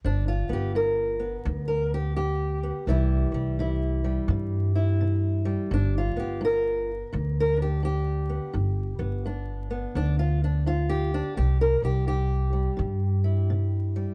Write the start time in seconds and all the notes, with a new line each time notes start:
0.04 G1 G2 D4
0.28 F4
0.49 G1 B3 G4
0.75 G2 A#4
1.19 B3
1.45 D2 G2
1.68 A#4
1.94 G4
2.16 G2 G4
2.63 B3
2.87 C2 C3 E3 G3 E4 G4
3.32 C2 G3
3.59 C3 E4
4.04 G3
4.28 G2 C3
4.75 E4
5.01 C3
5.45 G3
5.71 G1 G2 D4
5.98 F4
6.16 G1 B3 G4
6.41 G2 A#4
7.13 D2 G2
7.40 A#4
7.57 D4
7.62 G4
7.83 G2 G4
8.29 B3
8.53 G1 G2
8.99 G1 B3
9.26 G2 D4
9.70 B3
9.95 D2 G2 D4
10.19 F4
10.44 D4
10.66 G2 F4
10.89 G4
11.14 D4
11.37 C2 C3 G4
11.61 A#4
11.82 C2 G3 G4
12.07 C3 G4
12.53 G3
12.77 G2 C3
13.24 E4
13.50 C3
13.96 G3